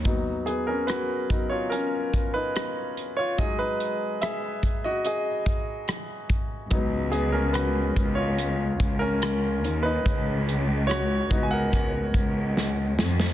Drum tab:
HH |x-x-x-x-x-x-x-x-|x-x-x-x-x-x-x-x-|x-x-x-x-x-x-x-x-|x-x-x-x-x-x-----|
SD |----r-------r---|----r-------r---|----r-------r---|----r-------o-oo|
BD |o-----o---o-----|o-----o---o---o-|o-----o---o-----|o-----o-o-o-----|